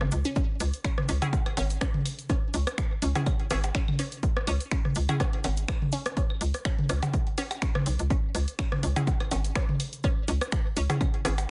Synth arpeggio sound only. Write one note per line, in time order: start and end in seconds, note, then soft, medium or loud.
0.25 0.29 C#4 loud
0.36 0.40 C#4 medium
0.85 0.90 C#4 loud
1.09 1.12 C#4 medium
1.57 1.62 C#4 loud
1.81 1.85 C#4 medium
2.30 2.35 C#4 loud
2.54 2.57 C#4 medium
3.02 3.07 C#4 loud
3.26 3.30 C#4 medium
3.75 3.80 C#4 loud
3.99 4.02 C#4 medium
4.47 4.52 C#4 loud
4.72 4.75 C#4 medium
5.20 5.25 C#4 loud
5.44 5.48 C#4 medium
5.93 5.98 C#4 loud
6.17 6.20 C#4 medium
6.65 6.70 C#4 loud
6.89 6.93 C#4 medium
7.38 7.43 C#4 loud
7.62 7.65 C#4 medium
8.10 8.14 C#4 medium
8.59 8.62 C#4 loud
8.83 8.86 C#4 medium
9.31 9.35 C#4 loud
9.56 9.59 C#4 medium
10.04 10.07 C#4 loud
10.28 10.32 C#4 medium
10.77 10.80 C#4 loud
11.01 11.04 C#4 medium